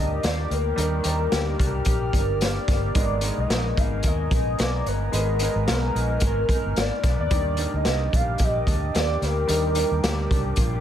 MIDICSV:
0, 0, Header, 1, 8, 480
1, 0, Start_track
1, 0, Key_signature, -3, "major"
1, 0, Tempo, 544465
1, 684, Time_signature, 4, 2, 24, 8
1, 9525, End_track
2, 0, Start_track
2, 0, Title_t, "Ambient pad"
2, 0, Program_c, 0, 92
2, 0, Note_on_c, 0, 70, 79
2, 0, Note_on_c, 0, 79, 76
2, 0, Note_on_c, 0, 82, 91
2, 0, Note_on_c, 0, 86, 75
2, 667, Note_off_c, 0, 82, 0
2, 675, Note_on_c, 0, 89, 90
2, 2571, Note_off_c, 0, 70, 0
2, 2571, Note_off_c, 0, 79, 0
2, 2575, Note_off_c, 0, 86, 0
2, 2581, Note_off_c, 0, 89, 0
2, 2596, Note_on_c, 0, 59, 79
2, 2598, Note_on_c, 0, 82, 77
2, 2600, Note_on_c, 0, 80, 78
2, 4516, Note_on_c, 0, 89, 95
2, 6406, Note_off_c, 0, 59, 0
2, 6407, Note_off_c, 0, 82, 0
2, 6408, Note_off_c, 0, 80, 0
2, 6422, Note_off_c, 0, 89, 0
2, 6454, Note_on_c, 0, 70, 77
2, 6456, Note_on_c, 0, 86, 69
2, 6459, Note_on_c, 0, 79, 67
2, 9525, Note_off_c, 0, 70, 0
2, 9525, Note_off_c, 0, 79, 0
2, 9525, Note_off_c, 0, 86, 0
2, 9525, End_track
3, 0, Start_track
3, 0, Title_t, "Soft synth lead"
3, 0, Program_c, 1, 80
3, 0, Note_on_c, 1, 75, 88
3, 215, Note_on_c, 1, 74, 98
3, 228, Note_off_c, 1, 75, 0
3, 465, Note_on_c, 1, 70, 94
3, 478, Note_off_c, 1, 74, 0
3, 1893, Note_off_c, 1, 70, 0
3, 1898, Note_on_c, 1, 70, 80
3, 2140, Note_on_c, 1, 74, 98
3, 2153, Note_off_c, 1, 70, 0
3, 2504, Note_off_c, 1, 74, 0
3, 2518, Note_on_c, 1, 74, 86
3, 2991, Note_on_c, 1, 75, 95
3, 3004, Note_off_c, 1, 74, 0
3, 3341, Note_on_c, 1, 77, 102
3, 3354, Note_off_c, 1, 75, 0
3, 3585, Note_on_c, 1, 75, 94
3, 3598, Note_off_c, 1, 77, 0
3, 4060, Note_on_c, 1, 74, 106
3, 4073, Note_off_c, 1, 75, 0
3, 4303, Note_on_c, 1, 70, 102
3, 4316, Note_off_c, 1, 74, 0
3, 5735, Note_off_c, 1, 70, 0
3, 5749, Note_on_c, 1, 70, 87
3, 5984, Note_on_c, 1, 74, 106
3, 5997, Note_off_c, 1, 70, 0
3, 6347, Note_off_c, 1, 74, 0
3, 6353, Note_on_c, 1, 74, 90
3, 6792, Note_off_c, 1, 74, 0
3, 6838, Note_on_c, 1, 75, 92
3, 7190, Note_on_c, 1, 77, 90
3, 7203, Note_off_c, 1, 75, 0
3, 7437, Note_on_c, 1, 75, 93
3, 7450, Note_off_c, 1, 77, 0
3, 7907, Note_on_c, 1, 74, 94
3, 7921, Note_off_c, 1, 75, 0
3, 8148, Note_on_c, 1, 70, 100
3, 8161, Note_off_c, 1, 74, 0
3, 9525, Note_off_c, 1, 70, 0
3, 9525, End_track
4, 0, Start_track
4, 0, Title_t, "Clean electric guitar"
4, 0, Program_c, 2, 27
4, 0, Note_on_c, 2, 51, 80
4, 0, Note_on_c, 2, 58, 54
4, 0, Note_on_c, 2, 62, 60
4, 0, Note_on_c, 2, 67, 67
4, 199, Note_off_c, 2, 67, 0
4, 202, Note_on_c, 2, 65, 75
4, 335, Note_off_c, 2, 65, 0
4, 335, Note_on_c, 2, 67, 57
4, 444, Note_off_c, 2, 58, 0
4, 448, Note_on_c, 2, 58, 61
4, 678, Note_off_c, 2, 51, 0
4, 681, Note_on_c, 2, 51, 86
4, 910, Note_off_c, 2, 62, 0
4, 921, Note_on_c, 2, 62, 59
4, 1151, Note_off_c, 2, 67, 0
4, 1162, Note_on_c, 2, 67, 60
4, 1390, Note_off_c, 2, 62, 0
4, 1401, Note_on_c, 2, 62, 65
4, 1625, Note_off_c, 2, 67, 0
4, 1636, Note_on_c, 2, 67, 68
4, 1864, Note_off_c, 2, 62, 0
4, 1875, Note_on_c, 2, 62, 62
4, 2112, Note_off_c, 2, 67, 0
4, 2123, Note_on_c, 2, 67, 66
4, 2363, Note_off_c, 2, 58, 0
4, 2367, Note_on_c, 2, 58, 62
4, 2605, Note_off_c, 2, 51, 0
4, 2609, Note_on_c, 2, 56, 86
4, 2653, Note_off_c, 2, 62, 0
4, 2657, Note_off_c, 2, 67, 0
4, 2844, Note_on_c, 2, 63, 66
4, 3086, Note_on_c, 2, 70, 65
4, 3318, Note_off_c, 2, 63, 0
4, 3321, Note_on_c, 2, 63, 63
4, 3562, Note_off_c, 2, 70, 0
4, 3566, Note_on_c, 2, 70, 67
4, 3795, Note_off_c, 2, 63, 0
4, 3799, Note_on_c, 2, 63, 57
4, 4035, Note_off_c, 2, 70, 0
4, 4039, Note_on_c, 2, 70, 73
4, 4276, Note_off_c, 2, 58, 0
4, 4280, Note_on_c, 2, 59, 59
4, 4511, Note_off_c, 2, 56, 0
4, 4522, Note_on_c, 2, 56, 81
4, 4760, Note_off_c, 2, 63, 0
4, 4764, Note_on_c, 2, 63, 58
4, 5003, Note_off_c, 2, 70, 0
4, 5007, Note_on_c, 2, 70, 62
4, 5243, Note_off_c, 2, 63, 0
4, 5246, Note_on_c, 2, 63, 68
4, 5485, Note_off_c, 2, 70, 0
4, 5489, Note_on_c, 2, 70, 69
4, 5729, Note_off_c, 2, 63, 0
4, 5733, Note_on_c, 2, 63, 62
4, 5962, Note_off_c, 2, 70, 0
4, 5965, Note_on_c, 2, 70, 67
4, 6195, Note_off_c, 2, 59, 0
4, 6205, Note_on_c, 2, 59, 62
4, 6441, Note_on_c, 2, 51, 82
4, 6444, Note_off_c, 2, 56, 0
4, 6498, Note_off_c, 2, 59, 0
4, 6682, Note_off_c, 2, 63, 0
4, 6686, Note_on_c, 2, 62, 64
4, 6924, Note_off_c, 2, 70, 0
4, 6927, Note_on_c, 2, 67, 61
4, 7158, Note_off_c, 2, 62, 0
4, 7169, Note_on_c, 2, 62, 62
4, 7392, Note_off_c, 2, 67, 0
4, 7403, Note_on_c, 2, 67, 64
4, 7634, Note_off_c, 2, 62, 0
4, 7644, Note_on_c, 2, 62, 59
4, 7871, Note_off_c, 2, 67, 0
4, 7882, Note_on_c, 2, 67, 73
4, 8123, Note_on_c, 2, 58, 57
4, 8364, Note_off_c, 2, 51, 0
4, 8368, Note_on_c, 2, 51, 85
4, 8594, Note_off_c, 2, 62, 0
4, 8605, Note_on_c, 2, 62, 61
4, 8833, Note_off_c, 2, 67, 0
4, 8843, Note_on_c, 2, 67, 69
4, 9080, Note_off_c, 2, 62, 0
4, 9090, Note_on_c, 2, 62, 70
4, 9325, Note_off_c, 2, 67, 0
4, 9329, Note_on_c, 2, 65, 67
4, 9456, Note_off_c, 2, 65, 0
4, 9456, Note_on_c, 2, 67, 60
4, 9525, Note_off_c, 2, 51, 0
4, 9525, Note_off_c, 2, 58, 0
4, 9525, Note_off_c, 2, 62, 0
4, 9525, Note_off_c, 2, 67, 0
4, 9525, End_track
5, 0, Start_track
5, 0, Title_t, "Upright piano"
5, 0, Program_c, 3, 0
5, 0, Control_c, 3, 64, 127
5, 0, Note_on_c, 3, 53, 52
5, 0, Note_on_c, 3, 55, 71
5, 0, Note_on_c, 3, 58, 60
5, 0, Note_on_c, 3, 62, 61
5, 0, Note_on_c, 3, 63, 62
5, 0, Note_on_c, 3, 70, 74
5, 670, Note_off_c, 3, 55, 0
5, 670, Note_on_c, 3, 55, 78
5, 677, Note_off_c, 3, 62, 0
5, 677, Note_on_c, 3, 62, 65
5, 684, Note_off_c, 3, 63, 0
5, 684, Note_on_c, 3, 63, 68
5, 693, Note_off_c, 3, 70, 0
5, 693, Note_on_c, 3, 70, 84
5, 899, Note_off_c, 3, 55, 0
5, 905, Note_off_c, 3, 62, 0
5, 909, Note_off_c, 3, 63, 0
5, 912, Note_on_c, 3, 55, 69
5, 913, Note_off_c, 3, 70, 0
5, 922, Note_on_c, 3, 62, 63
5, 929, Note_on_c, 3, 63, 62
5, 935, Note_on_c, 3, 70, 72
5, 1816, Note_off_c, 3, 55, 0
5, 1821, Note_off_c, 3, 62, 0
5, 1824, Note_off_c, 3, 63, 0
5, 1827, Note_off_c, 3, 70, 0
5, 2597, Note_on_c, 3, 56, 75
5, 2605, Note_on_c, 3, 59, 70
5, 2610, Note_on_c, 3, 63, 66
5, 2615, Control_c, 3, 64, 0
5, 2617, Note_off_c, 3, 53, 0
5, 2617, Note_off_c, 3, 58, 0
5, 2622, Note_on_c, 3, 70, 78
5, 2790, Control_c, 3, 64, 127
5, 2820, Note_off_c, 3, 56, 0
5, 2827, Note_off_c, 3, 59, 0
5, 2832, Note_off_c, 3, 63, 0
5, 2833, Note_on_c, 3, 56, 74
5, 2838, Note_off_c, 3, 70, 0
5, 2841, Note_on_c, 3, 59, 57
5, 2849, Note_on_c, 3, 63, 65
5, 2855, Note_on_c, 3, 70, 74
5, 3737, Note_off_c, 3, 56, 0
5, 3740, Note_off_c, 3, 59, 0
5, 3745, Note_off_c, 3, 63, 0
5, 3748, Note_off_c, 3, 70, 0
5, 4512, Note_on_c, 3, 56, 82
5, 4520, Note_on_c, 3, 59, 70
5, 4527, Note_on_c, 3, 63, 70
5, 4532, Note_on_c, 3, 71, 81
5, 4743, Note_off_c, 3, 56, 0
5, 4747, Note_off_c, 3, 59, 0
5, 4750, Note_off_c, 3, 63, 0
5, 4753, Note_off_c, 3, 71, 0
5, 4758, Note_on_c, 3, 56, 67
5, 4766, Note_on_c, 3, 59, 60
5, 4775, Note_on_c, 3, 63, 64
5, 4782, Note_on_c, 3, 70, 74
5, 5659, Note_off_c, 3, 56, 0
5, 5663, Note_off_c, 3, 59, 0
5, 5668, Note_off_c, 3, 63, 0
5, 5671, Note_off_c, 3, 70, 0
5, 6440, Note_on_c, 3, 55, 75
5, 6446, Note_on_c, 3, 62, 64
5, 6455, Control_c, 3, 64, 0
5, 6456, Note_on_c, 3, 63, 67
5, 6459, Note_on_c, 3, 70, 75
5, 6616, Control_c, 3, 64, 127
5, 6667, Note_off_c, 3, 55, 0
5, 6670, Note_off_c, 3, 62, 0
5, 6675, Note_off_c, 3, 63, 0
5, 6677, Note_off_c, 3, 70, 0
5, 6681, Note_on_c, 3, 55, 64
5, 6688, Note_on_c, 3, 58, 63
5, 6695, Note_on_c, 3, 63, 62
5, 6701, Note_on_c, 3, 70, 75
5, 7581, Note_off_c, 3, 55, 0
5, 7584, Note_off_c, 3, 58, 0
5, 7588, Note_off_c, 3, 63, 0
5, 7590, Note_off_c, 3, 70, 0
5, 8353, Note_on_c, 3, 55, 70
5, 8359, Note_on_c, 3, 62, 70
5, 8368, Note_on_c, 3, 63, 69
5, 8375, Note_on_c, 3, 70, 80
5, 8584, Note_off_c, 3, 55, 0
5, 8587, Note_off_c, 3, 62, 0
5, 8591, Note_off_c, 3, 63, 0
5, 8595, Note_off_c, 3, 70, 0
5, 8597, Note_on_c, 3, 55, 69
5, 8601, Note_on_c, 3, 62, 61
5, 8610, Note_on_c, 3, 63, 64
5, 8620, Note_on_c, 3, 70, 78
5, 9499, Note_off_c, 3, 55, 0
5, 9501, Note_off_c, 3, 62, 0
5, 9505, Note_off_c, 3, 63, 0
5, 9510, Note_off_c, 3, 70, 0
5, 9525, End_track
6, 0, Start_track
6, 0, Title_t, "Fingered electric bass"
6, 0, Program_c, 4, 33
6, 0, Note_on_c, 4, 38, 77
6, 155, Note_off_c, 4, 38, 0
6, 208, Note_on_c, 4, 39, 89
6, 399, Note_off_c, 4, 39, 0
6, 444, Note_on_c, 4, 38, 94
6, 636, Note_off_c, 4, 38, 0
6, 682, Note_on_c, 4, 39, 101
6, 875, Note_off_c, 4, 39, 0
6, 924, Note_on_c, 4, 39, 86
6, 1116, Note_off_c, 4, 39, 0
6, 1165, Note_on_c, 4, 38, 100
6, 1357, Note_off_c, 4, 38, 0
6, 1407, Note_on_c, 4, 36, 87
6, 1598, Note_off_c, 4, 36, 0
6, 1642, Note_on_c, 4, 34, 83
6, 1835, Note_off_c, 4, 34, 0
6, 1882, Note_on_c, 4, 31, 91
6, 2267, Note_off_c, 4, 31, 0
6, 2364, Note_on_c, 4, 31, 91
6, 2556, Note_off_c, 4, 31, 0
6, 2605, Note_on_c, 4, 32, 99
6, 2902, Note_off_c, 4, 32, 0
6, 2978, Note_on_c, 4, 35, 83
6, 3064, Note_off_c, 4, 35, 0
6, 3084, Note_on_c, 4, 34, 93
6, 3276, Note_off_c, 4, 34, 0
6, 3331, Note_on_c, 4, 32, 82
6, 3521, Note_off_c, 4, 32, 0
6, 3562, Note_on_c, 4, 39, 108
6, 3756, Note_off_c, 4, 39, 0
6, 3802, Note_on_c, 4, 34, 98
6, 3995, Note_off_c, 4, 34, 0
6, 4050, Note_on_c, 4, 35, 98
6, 4240, Note_off_c, 4, 35, 0
6, 4284, Note_on_c, 4, 31, 91
6, 4477, Note_off_c, 4, 31, 0
6, 4524, Note_on_c, 4, 32, 108
6, 4822, Note_off_c, 4, 32, 0
6, 4895, Note_on_c, 4, 32, 88
6, 4983, Note_off_c, 4, 32, 0
6, 5006, Note_on_c, 4, 35, 90
6, 5198, Note_off_c, 4, 35, 0
6, 5245, Note_on_c, 4, 34, 77
6, 5437, Note_off_c, 4, 34, 0
6, 5484, Note_on_c, 4, 32, 100
6, 5676, Note_off_c, 4, 32, 0
6, 5860, Note_on_c, 4, 31, 72
6, 5946, Note_off_c, 4, 31, 0
6, 5968, Note_on_c, 4, 32, 90
6, 6073, Note_off_c, 4, 32, 0
6, 6205, Note_on_c, 4, 35, 86
6, 6311, Note_off_c, 4, 35, 0
6, 6338, Note_on_c, 4, 39, 85
6, 6424, Note_off_c, 4, 39, 0
6, 6445, Note_on_c, 4, 39, 95
6, 6743, Note_off_c, 4, 39, 0
6, 6820, Note_on_c, 4, 38, 82
6, 6906, Note_off_c, 4, 38, 0
6, 6930, Note_on_c, 4, 36, 96
6, 7120, Note_off_c, 4, 36, 0
6, 7170, Note_on_c, 4, 34, 81
6, 7360, Note_off_c, 4, 34, 0
6, 7405, Note_on_c, 4, 34, 93
6, 7598, Note_off_c, 4, 34, 0
6, 7644, Note_on_c, 4, 38, 90
6, 7837, Note_off_c, 4, 38, 0
6, 7888, Note_on_c, 4, 39, 95
6, 8079, Note_off_c, 4, 39, 0
6, 8124, Note_on_c, 4, 38, 89
6, 8317, Note_off_c, 4, 38, 0
6, 8366, Note_on_c, 4, 39, 114
6, 8663, Note_off_c, 4, 39, 0
6, 8738, Note_on_c, 4, 39, 87
6, 8824, Note_off_c, 4, 39, 0
6, 8846, Note_on_c, 4, 38, 103
6, 9038, Note_off_c, 4, 38, 0
6, 9089, Note_on_c, 4, 36, 94
6, 9280, Note_off_c, 4, 36, 0
6, 9323, Note_on_c, 4, 34, 103
6, 9516, Note_off_c, 4, 34, 0
6, 9525, End_track
7, 0, Start_track
7, 0, Title_t, "Muted fingered electric bass strokes"
7, 5722, Note_on_c, 9, 29, 45
7, 5810, Note_off_c, 9, 29, 0
7, 9525, End_track
8, 0, Start_track
8, 0, Title_t, "Drums"
8, 205, Note_on_c, 9, 42, 84
8, 216, Note_on_c, 9, 38, 106
8, 293, Note_off_c, 9, 42, 0
8, 304, Note_off_c, 9, 38, 0
8, 452, Note_on_c, 9, 42, 67
8, 540, Note_off_c, 9, 42, 0
8, 685, Note_on_c, 9, 42, 89
8, 773, Note_off_c, 9, 42, 0
8, 916, Note_on_c, 9, 42, 90
8, 1004, Note_off_c, 9, 42, 0
8, 1163, Note_on_c, 9, 42, 77
8, 1164, Note_on_c, 9, 38, 118
8, 1251, Note_off_c, 9, 42, 0
8, 1252, Note_off_c, 9, 38, 0
8, 1407, Note_on_c, 9, 36, 86
8, 1416, Note_on_c, 9, 42, 68
8, 1495, Note_off_c, 9, 36, 0
8, 1504, Note_off_c, 9, 42, 0
8, 1630, Note_on_c, 9, 42, 83
8, 1640, Note_on_c, 9, 36, 78
8, 1718, Note_off_c, 9, 42, 0
8, 1729, Note_off_c, 9, 36, 0
8, 1880, Note_on_c, 9, 36, 84
8, 1888, Note_on_c, 9, 42, 71
8, 1968, Note_off_c, 9, 36, 0
8, 1976, Note_off_c, 9, 42, 0
8, 2124, Note_on_c, 9, 42, 94
8, 2134, Note_on_c, 9, 38, 115
8, 2212, Note_off_c, 9, 42, 0
8, 2222, Note_off_c, 9, 38, 0
8, 2363, Note_on_c, 9, 36, 98
8, 2369, Note_on_c, 9, 38, 36
8, 2369, Note_on_c, 9, 42, 69
8, 2451, Note_off_c, 9, 36, 0
8, 2457, Note_off_c, 9, 38, 0
8, 2457, Note_off_c, 9, 42, 0
8, 2599, Note_on_c, 9, 42, 98
8, 2602, Note_on_c, 9, 36, 112
8, 2688, Note_off_c, 9, 42, 0
8, 2690, Note_off_c, 9, 36, 0
8, 2832, Note_on_c, 9, 42, 93
8, 2920, Note_off_c, 9, 42, 0
8, 3087, Note_on_c, 9, 42, 74
8, 3088, Note_on_c, 9, 38, 114
8, 3175, Note_off_c, 9, 42, 0
8, 3176, Note_off_c, 9, 38, 0
8, 3328, Note_on_c, 9, 36, 87
8, 3336, Note_on_c, 9, 42, 66
8, 3416, Note_off_c, 9, 36, 0
8, 3424, Note_off_c, 9, 42, 0
8, 3550, Note_on_c, 9, 42, 80
8, 3561, Note_on_c, 9, 36, 87
8, 3638, Note_off_c, 9, 42, 0
8, 3649, Note_off_c, 9, 36, 0
8, 3801, Note_on_c, 9, 36, 89
8, 3810, Note_on_c, 9, 42, 76
8, 3889, Note_off_c, 9, 36, 0
8, 3898, Note_off_c, 9, 42, 0
8, 4043, Note_on_c, 9, 42, 86
8, 4053, Note_on_c, 9, 38, 111
8, 4131, Note_off_c, 9, 42, 0
8, 4142, Note_off_c, 9, 38, 0
8, 4289, Note_on_c, 9, 42, 68
8, 4377, Note_off_c, 9, 42, 0
8, 4522, Note_on_c, 9, 42, 85
8, 4610, Note_off_c, 9, 42, 0
8, 4754, Note_on_c, 9, 42, 88
8, 4843, Note_off_c, 9, 42, 0
8, 5004, Note_on_c, 9, 42, 71
8, 5005, Note_on_c, 9, 38, 103
8, 5092, Note_off_c, 9, 42, 0
8, 5093, Note_off_c, 9, 38, 0
8, 5255, Note_on_c, 9, 42, 63
8, 5343, Note_off_c, 9, 42, 0
8, 5468, Note_on_c, 9, 42, 82
8, 5480, Note_on_c, 9, 36, 84
8, 5556, Note_off_c, 9, 42, 0
8, 5569, Note_off_c, 9, 36, 0
8, 5719, Note_on_c, 9, 36, 82
8, 5725, Note_on_c, 9, 42, 76
8, 5807, Note_off_c, 9, 36, 0
8, 5814, Note_off_c, 9, 42, 0
8, 5962, Note_on_c, 9, 42, 83
8, 5973, Note_on_c, 9, 38, 112
8, 6051, Note_off_c, 9, 42, 0
8, 6061, Note_off_c, 9, 38, 0
8, 6202, Note_on_c, 9, 36, 98
8, 6204, Note_on_c, 9, 42, 67
8, 6205, Note_on_c, 9, 38, 35
8, 6291, Note_off_c, 9, 36, 0
8, 6292, Note_off_c, 9, 42, 0
8, 6293, Note_off_c, 9, 38, 0
8, 6442, Note_on_c, 9, 42, 93
8, 6444, Note_on_c, 9, 36, 107
8, 6530, Note_off_c, 9, 42, 0
8, 6532, Note_off_c, 9, 36, 0
8, 6673, Note_on_c, 9, 42, 87
8, 6761, Note_off_c, 9, 42, 0
8, 6920, Note_on_c, 9, 42, 79
8, 6921, Note_on_c, 9, 38, 111
8, 7008, Note_off_c, 9, 42, 0
8, 7009, Note_off_c, 9, 38, 0
8, 7169, Note_on_c, 9, 36, 81
8, 7175, Note_on_c, 9, 42, 66
8, 7257, Note_off_c, 9, 36, 0
8, 7263, Note_off_c, 9, 42, 0
8, 7390, Note_on_c, 9, 42, 84
8, 7402, Note_on_c, 9, 36, 77
8, 7478, Note_off_c, 9, 42, 0
8, 7490, Note_off_c, 9, 36, 0
8, 7642, Note_on_c, 9, 36, 79
8, 7649, Note_on_c, 9, 42, 81
8, 7730, Note_off_c, 9, 36, 0
8, 7738, Note_off_c, 9, 42, 0
8, 7887, Note_on_c, 9, 42, 81
8, 7897, Note_on_c, 9, 38, 116
8, 7975, Note_off_c, 9, 42, 0
8, 7986, Note_off_c, 9, 38, 0
8, 8131, Note_on_c, 9, 42, 68
8, 8132, Note_on_c, 9, 38, 34
8, 8219, Note_off_c, 9, 42, 0
8, 8220, Note_off_c, 9, 38, 0
8, 8362, Note_on_c, 9, 42, 89
8, 8450, Note_off_c, 9, 42, 0
8, 8595, Note_on_c, 9, 42, 87
8, 8684, Note_off_c, 9, 42, 0
8, 8848, Note_on_c, 9, 42, 75
8, 8849, Note_on_c, 9, 38, 111
8, 8936, Note_off_c, 9, 42, 0
8, 8937, Note_off_c, 9, 38, 0
8, 9088, Note_on_c, 9, 36, 92
8, 9098, Note_on_c, 9, 42, 69
8, 9176, Note_off_c, 9, 36, 0
8, 9187, Note_off_c, 9, 42, 0
8, 9310, Note_on_c, 9, 42, 85
8, 9320, Note_on_c, 9, 36, 85
8, 9398, Note_off_c, 9, 42, 0
8, 9408, Note_off_c, 9, 36, 0
8, 9525, End_track
0, 0, End_of_file